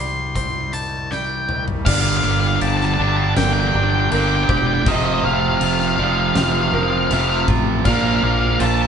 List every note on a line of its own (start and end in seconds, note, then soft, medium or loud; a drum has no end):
0.00 1.82 C2 medium
0.00 0.73 C3 medium
0.00 0.72 D#3 medium
0.00 1.10 G3 medium
0.00 0.36 D5 medium
0.00 0.34 C6 medium
0.35 1.86 C4 medium
0.35 1.11 C5 medium
0.35 0.71 C6 medium
0.35 kick medium
0.35 closed hi-hat medium
0.73 1.47 D#3 medium
0.73 1.13 A5 medium
0.73 closed hi-hat medium
1.11 1.86 G3 medium
1.11 1.49 D5 medium
1.11 1.64 G5 medium
1.11 snare soft
1.48 1.86 D#3 medium
1.48 1.87 C5 medium
1.48 mid tom medium
1.68 floor tom medium
1.85 2.20 G1 loud
1.85 2.97 G2 medium
1.85 3.74 G2 medium
1.85 2.98 D3 loud
1.85 2.97 G3 loud
1.85 2.62 D5 medium
1.85 1.93 F5 loud
1.85 kick loud
1.85 crash loud
1.85 crash medium
1.94 2.01 F5 medium
2.01 2.08 F5 loud
2.09 2.17 F5 medium
2.17 2.24 F5 loud
2.24 2.57 G1 medium
2.24 3.36 A#3 medium
2.24 2.31 F5 medium
2.31 2.39 F5 loud
2.40 2.47 F5 medium
2.48 2.56 F5 loud
2.56 2.61 F5 medium
2.61 2.95 G1 medium
2.61 4.48 G4 medium
2.61 3.37 F5 medium
2.61 2.68 A5 loud
2.61 crash medium
2.68 2.76 A5 medium
2.77 2.85 A5 loud
2.77 snare soft
2.85 2.93 A5 medium
2.94 3.02 A5 loud
2.98 3.33 G1 loud
2.98 4.10 G2 medium
2.98 4.10 D3 medium
2.98 4.09 G3 medium
2.98 3.73 D4 medium
2.98 3.08 A5 medium
3.09 3.16 A5 loud
3.17 3.23 A5 medium
3.24 3.32 A5 medium
3.37 3.70 G1 medium
3.37 4.11 A#3 medium
3.37 3.74 A#4 medium
3.37 3.44 G5 loud
3.37 snare loud
3.37 crash medium
3.44 3.52 G5 medium
3.53 3.60 G5 loud
3.60 3.68 G5 medium
3.68 3.76 G5 loud
3.74 4.08 G1 loud
3.74 4.87 D4 medium
3.74 4.12 D5 medium
3.74 3.83 G5 medium
3.84 3.90 G5 medium
3.90 3.98 G5 medium
4.00 4.08 G5 medium
4.11 4.45 G1 medium
4.11 4.84 G2 medium
4.11 4.85 D3 medium
4.11 4.86 G3 medium
4.11 4.87 A#3 medium
4.11 4.49 A#4 medium
4.11 4.20 G5 loud
4.11 crash medium
4.21 4.27 G5 medium
4.28 4.35 G5 medium
4.36 4.43 G5 medium
4.44 4.49 G5 medium
4.49 4.82 E1 loud
4.49 4.87 G4 medium
4.49 5.22 C5 medium
4.49 4.57 G5 medium
4.49 kick medium
4.58 4.66 G5 loud
4.67 4.74 G5 medium
4.74 4.82 G5 medium
4.82 4.90 G5 medium
4.86 5.20 F1 loud
4.86 5.97 F2 medium
4.86 6.74 F2 medium
4.86 5.97 C3 medium
4.86 5.97 F3 loud
4.86 4.95 D#5 loud
4.86 kick loud
4.86 crash medium
4.96 5.04 D#5 medium
5.05 5.14 D#5 loud
5.14 5.23 D#5 medium
5.23 5.57 F1 medium
5.23 7.10 A3 medium
5.23 5.99 C5 medium
5.23 5.33 F5 loud
5.34 5.40 F5 medium
5.40 5.48 F5 medium
5.48 5.56 F5 medium
5.57 5.64 F5 medium
5.57 crash medium
5.61 5.94 F1 medium
5.61 7.47 F4 medium
5.61 5.72 F5 medium
5.73 5.80 F5 medium
5.80 5.88 F5 medium
5.80 snare soft
5.88 5.96 F5 medium
5.96 6.32 F1 medium
5.96 7.09 C3 medium
5.96 7.08 F3 loud
5.96 6.73 C4 medium
5.96 6.36 D5 medium
5.96 6.03 F5 medium
6.01 7.09 F2 medium
6.01 6.12 F5 medium
6.12 6.20 F5 medium
6.20 6.28 F5 medium
6.28 6.36 F5 medium
6.36 6.69 F1 loud
6.36 6.74 C5 medium
6.36 6.43 F5 medium
6.36 snare loud
6.36 crash medium
6.43 6.51 F5 medium
6.52 6.60 F5 medium
6.61 6.68 F5 medium
6.68 6.75 F5 medium
6.73 7.07 F1 loud
6.73 7.88 C4 medium
6.73 7.11 A#4 medium
6.73 6.83 F5 medium
6.83 6.90 F5 medium
6.90 6.97 F5 medium
6.98 7.05 F5 medium
7.07 7.44 F1 medium
7.07 7.83 F2 medium
7.07 7.86 C5 medium
7.07 7.13 F5 medium
7.07 crash medium
7.11 7.84 C3 medium
7.11 7.85 F3 medium
7.11 7.86 A3 medium
7.11 7.21 F5 medium
7.21 7.29 F5 medium
7.30 7.36 F5 medium
7.37 7.44 F5 medium
7.48 7.81 A1 medium
7.48 7.86 F4 medium
7.48 kick medium
7.85 8.19 A#1 loud
7.85 8.87 A#2 medium
7.85 8.87 F3 loud
7.85 8.87 A#3 loud
7.85 8.61 D5 medium
7.85 7.93 F5 loud
7.85 kick loud
7.85 crash medium
7.94 8.01 F5 medium
8.01 8.07 F5 loud
8.08 8.16 F5 medium
8.16 8.24 F5 loud
8.23 8.56 A#1 medium
8.23 8.87 A#3 medium
8.23 8.32 F5 loud
8.33 8.40 F5 loud
8.40 8.47 F5 medium
8.47 8.55 F5 loud
8.55 8.63 F5 medium
8.60 8.87 A#1 medium
8.60 8.87 F4 medium
8.60 8.87 F5 medium
8.60 8.66 A5 loud
8.60 crash medium
8.67 8.74 A5 medium
8.74 8.82 A5 loud
8.82 8.87 A5 medium